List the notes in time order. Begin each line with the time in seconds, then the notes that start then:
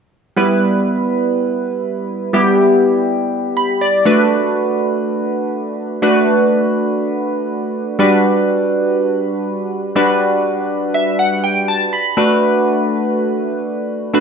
0.36 G3 B3 E4 B4
2.33 G3 B3 E4 G4
3.57 B5
3.81 D5
4.05 A3 D4 F#4 B4
6.02 A3 D4 F#4 B4
7.99 G3 D4 F#4 B4
9.96 G3 D4 F#4 B4
10.94 E5
11.19 F#5
11.44 G5
11.68 A5
11.93 B5
12.17 A3 D4 F#4 B4
14.14 A3 D4 F#4 B4